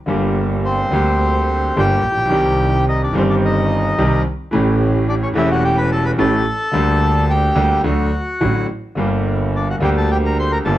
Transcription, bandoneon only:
0, 0, Header, 1, 2, 480
1, 0, Start_track
1, 0, Key_signature, -2, "minor"
1, 0, Tempo, 560748
1, 71, Time_signature, 4, 2, 24, 8
1, 1991, Tempo, 551471
1, 6311, Tempo, 561272
1, 9296, End_track
2, 0, Start_track
2, 0, Title_t, "Bandoneon"
2, 0, Program_c, 0, 23
2, 557, Note_on_c, 0, 72, 93
2, 565, Note_on_c, 0, 60, 72
2, 1487, Note_off_c, 0, 60, 0
2, 1529, Note_on_c, 0, 79, 104
2, 1535, Note_on_c, 0, 67, 78
2, 1546, Note_off_c, 0, 72, 0
2, 2444, Note_off_c, 0, 79, 0
2, 2448, Note_off_c, 0, 67, 0
2, 2478, Note_on_c, 0, 75, 92
2, 2483, Note_on_c, 0, 63, 72
2, 2590, Note_off_c, 0, 63, 0
2, 2599, Note_off_c, 0, 75, 0
2, 2602, Note_on_c, 0, 62, 62
2, 2608, Note_on_c, 0, 74, 81
2, 2709, Note_off_c, 0, 62, 0
2, 2712, Note_off_c, 0, 74, 0
2, 2724, Note_on_c, 0, 60, 64
2, 2727, Note_on_c, 0, 72, 79
2, 2776, Note_off_c, 0, 60, 0
2, 2778, Note_off_c, 0, 72, 0
2, 2834, Note_on_c, 0, 74, 80
2, 2836, Note_on_c, 0, 62, 65
2, 2887, Note_off_c, 0, 74, 0
2, 2889, Note_off_c, 0, 62, 0
2, 2967, Note_on_c, 0, 63, 68
2, 2968, Note_on_c, 0, 75, 89
2, 3643, Note_off_c, 0, 63, 0
2, 3644, Note_off_c, 0, 75, 0
2, 4392, Note_on_c, 0, 62, 73
2, 4397, Note_on_c, 0, 74, 93
2, 4445, Note_off_c, 0, 62, 0
2, 4449, Note_off_c, 0, 74, 0
2, 4508, Note_on_c, 0, 61, 65
2, 4518, Note_on_c, 0, 73, 84
2, 4562, Note_off_c, 0, 61, 0
2, 4570, Note_off_c, 0, 73, 0
2, 4638, Note_on_c, 0, 64, 73
2, 4646, Note_on_c, 0, 76, 93
2, 4745, Note_off_c, 0, 64, 0
2, 4749, Note_off_c, 0, 76, 0
2, 4765, Note_on_c, 0, 66, 70
2, 4771, Note_on_c, 0, 78, 96
2, 4868, Note_off_c, 0, 66, 0
2, 4871, Note_off_c, 0, 78, 0
2, 4879, Note_on_c, 0, 67, 80
2, 4883, Note_on_c, 0, 79, 102
2, 4985, Note_off_c, 0, 67, 0
2, 4994, Note_on_c, 0, 71, 80
2, 4997, Note_on_c, 0, 83, 102
2, 4999, Note_off_c, 0, 79, 0
2, 5102, Note_off_c, 0, 71, 0
2, 5104, Note_off_c, 0, 83, 0
2, 5120, Note_on_c, 0, 81, 109
2, 5123, Note_on_c, 0, 69, 80
2, 5228, Note_off_c, 0, 69, 0
2, 5235, Note_on_c, 0, 71, 83
2, 5235, Note_on_c, 0, 83, 100
2, 5237, Note_off_c, 0, 81, 0
2, 5288, Note_off_c, 0, 71, 0
2, 5288, Note_off_c, 0, 83, 0
2, 5352, Note_on_c, 0, 69, 90
2, 5358, Note_on_c, 0, 81, 110
2, 6276, Note_off_c, 0, 69, 0
2, 6321, Note_on_c, 0, 79, 99
2, 6322, Note_on_c, 0, 67, 73
2, 6342, Note_off_c, 0, 81, 0
2, 6763, Note_off_c, 0, 79, 0
2, 6764, Note_off_c, 0, 67, 0
2, 6793, Note_on_c, 0, 78, 82
2, 6801, Note_on_c, 0, 66, 65
2, 7486, Note_off_c, 0, 78, 0
2, 7490, Note_off_c, 0, 66, 0
2, 8250, Note_on_c, 0, 62, 59
2, 8255, Note_on_c, 0, 74, 74
2, 8356, Note_off_c, 0, 62, 0
2, 8359, Note_off_c, 0, 74, 0
2, 8368, Note_on_c, 0, 66, 59
2, 8374, Note_on_c, 0, 78, 70
2, 8420, Note_off_c, 0, 66, 0
2, 8425, Note_off_c, 0, 78, 0
2, 8486, Note_on_c, 0, 67, 65
2, 8489, Note_on_c, 0, 79, 84
2, 8538, Note_off_c, 0, 67, 0
2, 8541, Note_off_c, 0, 79, 0
2, 8607, Note_on_c, 0, 81, 84
2, 8608, Note_on_c, 0, 69, 64
2, 8714, Note_off_c, 0, 69, 0
2, 8724, Note_on_c, 0, 67, 65
2, 8724, Note_on_c, 0, 79, 93
2, 8725, Note_off_c, 0, 81, 0
2, 8776, Note_off_c, 0, 67, 0
2, 8776, Note_off_c, 0, 79, 0
2, 8845, Note_on_c, 0, 82, 82
2, 8848, Note_on_c, 0, 70, 64
2, 8951, Note_off_c, 0, 82, 0
2, 8953, Note_off_c, 0, 70, 0
2, 8965, Note_on_c, 0, 84, 96
2, 8971, Note_on_c, 0, 72, 77
2, 9070, Note_off_c, 0, 84, 0
2, 9073, Note_off_c, 0, 72, 0
2, 9073, Note_on_c, 0, 70, 72
2, 9076, Note_on_c, 0, 82, 96
2, 9126, Note_off_c, 0, 70, 0
2, 9129, Note_off_c, 0, 82, 0
2, 9184, Note_on_c, 0, 81, 85
2, 9192, Note_on_c, 0, 69, 64
2, 9292, Note_off_c, 0, 81, 0
2, 9296, Note_off_c, 0, 69, 0
2, 9296, End_track
0, 0, End_of_file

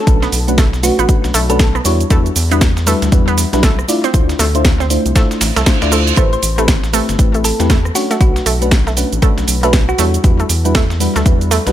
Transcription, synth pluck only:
0, 0, Header, 1, 2, 480
1, 0, Start_track
1, 0, Tempo, 508475
1, 67, Time_signature, 4, 2, 24, 8
1, 11066, End_track
2, 0, Start_track
2, 0, Title_t, "Synth pluck"
2, 0, Program_c, 0, 84
2, 0, Note_on_c, 0, 69, 94
2, 635, Note_off_c, 0, 69, 0
2, 788, Note_on_c, 0, 66, 93
2, 904, Note_off_c, 0, 66, 0
2, 934, Note_on_c, 0, 66, 89
2, 1019, Note_off_c, 0, 66, 0
2, 1414, Note_on_c, 0, 69, 84
2, 1473, Note_off_c, 0, 69, 0
2, 1507, Note_on_c, 0, 69, 73
2, 1600, Note_off_c, 0, 69, 0
2, 5828, Note_on_c, 0, 72, 91
2, 5921, Note_off_c, 0, 72, 0
2, 5975, Note_on_c, 0, 72, 80
2, 6034, Note_off_c, 0, 72, 0
2, 7030, Note_on_c, 0, 69, 100
2, 7162, Note_off_c, 0, 69, 0
2, 7507, Note_on_c, 0, 66, 98
2, 7600, Note_off_c, 0, 66, 0
2, 7655, Note_on_c, 0, 66, 77
2, 7714, Note_off_c, 0, 66, 0
2, 7748, Note_on_c, 0, 66, 95
2, 7881, Note_off_c, 0, 66, 0
2, 9334, Note_on_c, 0, 66, 93
2, 9486, Note_off_c, 0, 66, 0
2, 11066, End_track
0, 0, End_of_file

